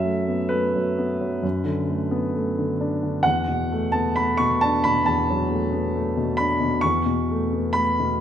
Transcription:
Already playing: F#2 F#3 E5
0.04 A3
0.28 B3
0.49 A3 B4
0.75 F#3
0.98 B3
1.21 F#3
1.43 F#2
1.64 D3
1.88 A3
2.11 B3
2.35 A3
2.58 D3
2.81 D4
3.03 D3
3.23 E2 F#5
3.48 B2
3.72 A3
3.92 B3 A5
4.16 A3 B5
4.37 B2 C#6
4.61 D4 A5
4.84 B2 B5
5.06 E2 A5
5.30 F#3
5.51 A3
5.73 B3
5.96 A3
6.17 B2
6.37 D4 B5
6.60 B2
6.81 E2 C#6
7.06 B2
7.31 A3
7.53 B3
7.73 A3 B5
8.00 B2

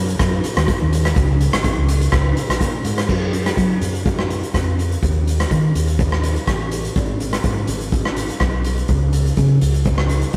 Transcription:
Already playing: F#2
0.08 closed hi-hat
0.19 F#2, kick, cross-stick, closed hi-hat
0.44 closed hi-hat
0.57 D#2, cross-stick, closed hi-hat
0.68 kick, closed hi-hat
0.81 D#2
0.93 closed hi-hat
1.05 cross-stick, closed hi-hat
1.16 C#2, kick, closed hi-hat
1.41 closed hi-hat
1.53 G#1, cross-stick, closed hi-hat
1.64 kick, closed hi-hat
1.78 C#2
1.88 closed hi-hat
2.01 closed hi-hat
2.12 C#2, kick, cross-stick, closed hi-hat
2.37 closed hi-hat
2.49 A#1, cross-stick, closed hi-hat
2.61 A#2, kick, closed hi-hat
2.84 G#2, closed hi-hat
2.98 cross-stick, closed hi-hat
3.09 F#2, kick, crash
3.33 closed hi-hat
3.46 cross-stick, closed hi-hat
3.57 F#3, kick, closed hi-hat
3.81 F#2, closed hi-hat
3.95 closed hi-hat
4.06 kick, closed hi-hat
4.19 cross-stick
4.30 closed hi-hat
4.43 closed hi-hat
4.54 F2, kick, cross-stick, closed hi-hat
4.79 closed hi-hat
4.92 closed hi-hat
5.03 D#2, kick, closed hi-hat
5.27 closed hi-hat
5.40 cross-stick, closed hi-hat
5.51 D#3, kick, closed hi-hat
5.75 D#2, closed hi-hat
5.88 closed hi-hat
5.99 kick, closed hi-hat
6.12 cross-stick
6.23 closed hi-hat
6.36 closed hi-hat
6.47 A1, kick, cross-stick, closed hi-hat
6.71 closed hi-hat
6.85 closed hi-hat
6.96 G#1, kick, closed hi-hat
7.20 closed hi-hat
7.33 cross-stick, closed hi-hat
7.43 G#2, kick, closed hi-hat
7.67 G#1, closed hi-hat
7.81 closed hi-hat
7.92 kick, closed hi-hat
8.05 cross-stick
8.16 closed hi-hat
8.29 closed hi-hat
8.40 B1, kick, cross-stick, closed hi-hat
8.64 closed hi-hat
8.77 closed hi-hat
8.88 C#2, kick, closed hi-hat
9.13 closed hi-hat
9.26 closed hi-hat
9.37 C#3, kick, closed hi-hat
9.61 C#2, closed hi-hat
9.74 closed hi-hat
9.85 kick, closed hi-hat
9.98 cross-stick
10.09 closed hi-hat
10.22 closed hi-hat
10.33 closed hi-hat

